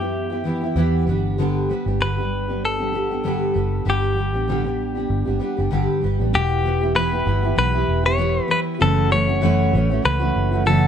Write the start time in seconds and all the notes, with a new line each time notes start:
Already playing: F#2 G4
0.00 B3 E4 G4
0.30 B3 E4 G4
0.44 E3 B3 E4 G4
0.61 B3 E4 G4
0.76 E2 E3 B3 E4 G4
1.06 G1 G3 B3 D4 G4
1.38 G2 D3 G3 B3 D4 G4
1.69 G3 B3 D4 G4
1.86 G1 G3 B3 D4 G4
2.00 G2 D3 G3 B3 D4 G4 B4
2.17 G3 B3 D4 G4
2.48 G3 B3 D4 G4
2.65 A4
2.78 G3 B3 D4 G4
2.93 G3 B3 D4 G4
3.09 G3 B3 D4 G4
3.23 A1 G2 D3 G3 B3 D4 G4
3.54 F#1 G3 B3 D4 G4
3.85 G1 G2 D3 G3 B3 D4 G4
3.90 G4
4.16 G3 B3 D4 G4
4.33 A1 G3 B3 D4 G4
4.48 G2 D3 G3 B3 D4 G4
4.64 G3 B3 D4 G4
4.95 G3 B3 D4 G4
5.10 G1
5.25 G1 G3 B3 D4 G4
5.39 G3 B3 D4 G4
5.57 F#1 G3 B3 D4 G4
5.70 G1 G2 D3 G3 B3 D4 G4
6.01 G1 G3 B3 D4 G4
6.19 A1 G3 B3 D4 G4
6.33 E1 E3 B3 E4 G4
6.64 E3 B3 E4 G4
6.81 B3 E4 G4
6.95 E3 B3 E4 G4 B4
7.12 B3 E4 G4
7.25 G1 E3 B3 E4 G4
7.43 B3 E4 G4
7.55 B1 E3 B3 E4 G4 B4
7.73 B3 E4 G4
7.88 E1
8.04 B3 E4 G4 C#5
8.17 E3 B3 E4 G4
8.48 E3 B3 E4 G4 B4
8.80 F#1 F#2 C#3 E3 A3 C#4 F#4 A4
9.10 E3 A3 C#4 F#4 C#5
9.27 E3 A3 C#4 F#4
9.41 F#2 C#3 E3 A3 C#4 F#4
9.73 A1 E3 A3 C#4 F#4
9.90 E3 A3 C#4 F#4
10.02 C#2 E3 A3 C#4 F#4 B4
10.19 E3 A3 C#4 F#4
10.36 F#1
10.52 E3 A3 C#4 F#4
10.65 F#2 C#3 E3 A3 C#4 F#4 A4